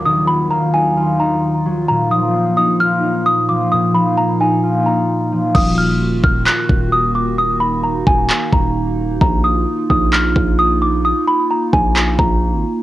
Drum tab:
CC |--------|--------|--------|x-------|
CP |--------|--------|--------|----x---|
BD |--------|--------|--------|o--o-o--|

CC |--------|--------|--------|
CP |----x---|----x---|----x---|
BD |---o-o--|o--o-o--|---o-o--|